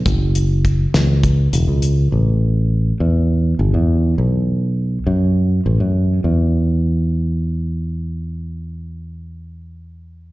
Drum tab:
HH |xxxxxxx|-------|-------|-------|
SD |---o---|-------|-------|-------|
BD |o-o-o--|-------|-------|-------|

HH |-------|
SD |-------|
BD |-------|